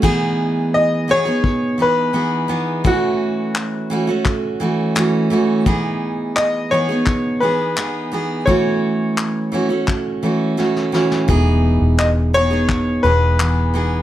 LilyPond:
<<
  \new Staff \with { instrumentName = "Upright piano" } { \time 4/4 \key e \major \tempo 4 = 85 r4 dis''8 cis''4 b'4. | fis'2.~ fis'8 r8 | r4 dis''8 cis''4 b'4. | cis''2.~ cis''8 r8 |
r4 dis''8 cis''4 b'4. | }
  \new Staff \with { instrumentName = "Steel-string acoustic guitar" } { \time 4/4 \key e \major <e b dis' gis'>4. <e b dis' gis'>16 <b dis' gis'>8. <e b dis' gis'>8 <e b dis' gis'>8 <e b dis' gis'>8 | <e a cis' fis'>4. <e a cis' fis'>16 <a cis' fis'>8. <e a cis' fis'>8 <e a cis' fis'>8 <e a cis' fis'>8 | <e b dis' gis'>4. <e b dis' gis'>16 <b dis' gis'>8. <e b dis' gis'>8 <e b dis' gis'>8 <e b dis' gis'>8 | <e a cis' fis'>4. <e a cis' fis'>16 <a cis' fis'>8. <e a cis' fis'>8 <e a cis' fis'>8 <e a cis' fis'>8 |
<e b dis' gis'>4. <e b dis' gis'>16 <b dis' gis'>8. <e b dis' gis'>8 <e b dis' gis'>8 <e b dis' gis'>8 | }
  \new Staff \with { instrumentName = "Fingered electric bass" } { \clef bass \time 4/4 \key e \major r1 | r1 | r1 | r1 |
e,,8. e,,4.~ e,,16 e,,4. | }
  \new DrumStaff \with { instrumentName = "Drums" } \drummode { \time 4/4 <cymc bd>4 r4 bd4 r4 | bd4 hc4 <hc bd>4 hc4 | bd4 hc4 <hc bd>4 hc4 | bd4 hc4 <hc bd>4 sn16 sn16 sn16 sn16 |
bd4 hc4 <hc bd>4 hc4 | }
>>